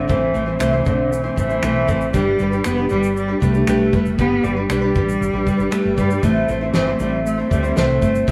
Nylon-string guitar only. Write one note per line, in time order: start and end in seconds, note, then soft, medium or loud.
0.08 0.34 A2 medium
0.08 0.35 E3 medium
0.08 0.33 A3 medium
0.08 0.34 C4 medium
0.08 0.35 E4 medium
0.08 0.35 C5 medium
0.34 0.47 A3 medium
0.34 0.47 C4 medium
0.34 0.46 E4 medium
0.34 0.45 C5 medium
0.46 0.59 A3 soft
0.46 0.59 C4 soft
0.46 0.59 E4 medium
0.46 0.60 C5 soft
0.59 0.73 A2 medium
0.59 0.73 E3 medium
0.59 0.73 A3 medium
0.59 0.73 C4 medium
0.59 0.73 E4 medium
0.59 0.72 C5 medium
0.73 0.84 A3 soft
0.73 0.85 C4 soft
0.73 0.86 E4 soft
0.73 0.86 C5 medium
0.85 1.24 A3 medium
0.85 1.25 C4 medium
0.85 1.24 E4 medium
0.85 1.23 C5 medium
1.24 1.35 A3 soft
1.24 1.36 C4 medium
1.24 1.37 E4 medium
1.24 1.37 C5 medium
1.36 1.50 A3 medium
1.36 1.50 C4 medium
1.36 1.50 E4 medium
1.36 1.48 C5 medium
1.49 1.62 A3 soft
1.49 1.62 C4 soft
1.49 1.63 E4 medium
1.49 1.63 C5 medium
1.62 1.88 A2 medium
1.62 1.89 E3 medium
1.62 1.86 A3 medium
1.62 1.88 C4 medium
1.62 1.88 E4 medium
1.62 1.89 C5 medium
1.87 2.13 A3 medium
1.87 2.14 C4 medium
1.87 2.14 E4 medium
1.87 2.15 C5 medium
2.13 2.38 G3 medium
2.13 2.39 D4 medium
2.13 2.40 G4 medium
2.13 2.41 B4 medium
2.39 2.52 G3 medium
2.39 2.53 D4 medium
2.39 2.52 G4 medium
2.39 2.50 B4 medium
2.52 2.64 D4 soft
2.52 2.64 G4 medium
2.52 2.65 B4 medium
2.64 2.78 G3 medium
2.64 2.78 D4 medium
2.64 2.77 G4 medium
2.64 2.75 B4 medium
2.77 2.89 D4 soft
2.77 2.90 G4 medium
2.77 2.90 B4 medium
2.89 3.28 G3 medium
2.89 3.29 D4 medium
2.89 3.29 G4 medium
2.89 3.27 B4 medium
3.28 3.40 D4 soft
3.28 3.41 G4 soft
3.28 3.42 B4 medium
3.40 3.54 G3 medium
3.40 3.55 D4 medium
3.40 3.54 G4 medium
3.40 3.52 B4 medium
3.53 3.67 D4 soft
3.53 3.67 G4 soft
3.53 3.67 B4 medium
3.67 3.91 G3 medium
3.67 3.93 D4 medium
3.67 3.94 G4 medium
3.67 3.94 B4 medium
3.92 4.17 G3 medium
3.92 4.18 D4 medium
3.92 4.19 G4 medium
3.92 4.19 B4 medium
4.18 4.42 G3 medium
4.18 4.43 D4 medium
4.18 4.44 G4 medium
4.18 4.45 B4 medium
4.43 4.56 G3 medium
4.43 4.57 D4 medium
4.43 4.57 G4 medium
4.43 4.55 B4 medium
4.57 4.69 D4 soft
4.57 4.70 G4 soft
4.57 4.70 B4 medium
4.69 4.82 G3 medium
4.69 4.83 D4 medium
4.69 4.82 G4 medium
4.69 4.80 B4 medium
4.82 4.95 D4 soft
4.82 4.96 G4 soft
4.82 4.95 B4 medium
4.95 5.34 G3 medium
4.95 5.34 D4 medium
4.95 5.34 G4 medium
4.95 5.32 B4 medium
5.33 5.46 D4 soft
5.33 5.47 G4 soft
5.33 5.46 B4 medium
5.46 5.59 G3 medium
5.46 5.59 D4 medium
5.46 5.59 G4 medium
5.46 5.57 B4 medium
5.58 5.70 D4 soft
5.58 5.71 G4 medium
5.58 5.71 B4 medium
5.71 5.95 G3 medium
5.71 5.97 D4 medium
5.71 5.98 G4 medium
5.71 5.98 B4 medium
5.96 6.10 G3 medium
5.96 6.11 D4 medium
5.96 6.10 G4 medium
5.96 6.08 B4 medium
6.09 6.24 D4 soft
6.09 6.24 G4 soft
6.09 6.23 B4 medium
6.23 6.49 A2 medium
6.23 6.49 E3 medium
6.23 6.47 A3 medium
6.23 6.48 C4 medium
6.23 6.49 E4 medium
6.23 6.50 C5 medium
6.48 6.61 A3 medium
6.48 6.62 C4 medium
6.48 6.61 E4 medium
6.48 6.60 C5 medium
6.61 6.74 A3 soft
6.61 6.74 C4 medium
6.61 6.74 E4 soft
6.61 6.74 C5 medium
6.74 6.87 A2 medium
6.74 6.87 E3 medium
6.74 6.87 A3 medium
6.74 6.88 C4 medium
6.74 6.87 E4 medium
6.74 6.86 C5 medium
6.87 6.98 A3 soft
6.87 6.99 C4 soft
6.87 7.01 E4 soft
6.87 7.00 C5 medium
6.99 7.38 A3 medium
6.99 7.38 C4 medium
6.99 7.38 E4 medium
6.99 7.37 C5 medium
7.38 7.49 A3 soft
7.38 7.50 C4 soft
7.38 7.52 E4 soft
7.38 7.51 C5 medium
7.50 7.64 A3 medium
7.50 7.64 C4 medium
7.50 7.63 E4 medium
7.50 7.62 C5 medium
7.63 7.76 A3 soft
7.63 7.76 C4 medium
7.63 7.76 E4 medium
7.63 7.76 C5 medium
7.76 8.02 A2 medium
7.76 8.02 E3 medium
7.76 8.00 A3 medium
7.76 8.01 C4 medium
7.76 8.02 E4 medium
7.76 8.03 C5 medium
8.01 8.27 A3 medium
8.01 8.27 C4 medium
8.01 8.28 E4 medium
8.01 8.28 C5 medium
8.27 8.31 A2 medium
8.27 8.31 E3 medium
8.27 8.31 A3 medium